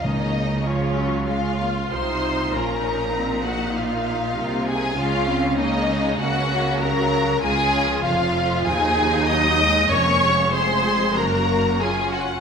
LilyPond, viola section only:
\new Staff \with { instrumentName = "Viola section" } { \time 4/4 \key bes \minor \tempo 4 = 97 << { des'4 f'4 f'2 | f'8 ees'2.~ ees'8 | \key des \major des'2 des'4 ges'4 | f'2 ees'2 |
des'4 aes'4 ges'4 f'4 | } \\ { bes4 f8 ges8 aes8 bes8 ees'4 | des'4 c'8 bes4. bes4 | aes8 c'8 bes8 aes8 bes4 ges4 | aes8 f2~ f8 ges8 aes8 |
bes8 aes8 aes4 bes4 des'4 | } >> }